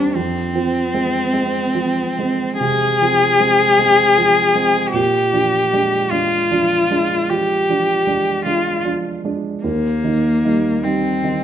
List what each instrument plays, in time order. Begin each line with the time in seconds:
Already playing: grand piano D#2 G3 C4, cello D4
0.15 grand piano F2, cello C4
0.55 grand piano F3 C4
0.94 grand piano G#3 C4
1.33 grand piano G#3 C4
1.74 grand piano F3 C4
2.19 grand piano G#3 C4
2.60 grand piano C3, cello G#4
3.01 grand piano F3 C4
3.40 grand piano G#3 C4
3.79 grand piano G#3 C4
4.17 grand piano F3 C4
4.55 grand piano G#3 C4
4.93 grand piano A#2, cello G4
5.33 grand piano F3 D4
5.73 grand piano G#3 D4
6.11 grand piano G#3 D4, cello F4
6.51 grand piano F3 D4
6.91 grand piano G#3 D4
7.30 grand piano F3, cello G4
7.69 grand piano F3 D4
8.07 grand piano G#3 D4
8.45 grand piano G#3 D4, cello F4
8.84 grand piano F3 D4
9.25 grand piano G#3 D4
9.64 grand piano D#2, cello A#3
10.04 grand piano D#3 D#4
10.45 grand piano G3 D#4
10.83 grand piano G3 D#4, cello C4
11.23 grand piano D#3 D#4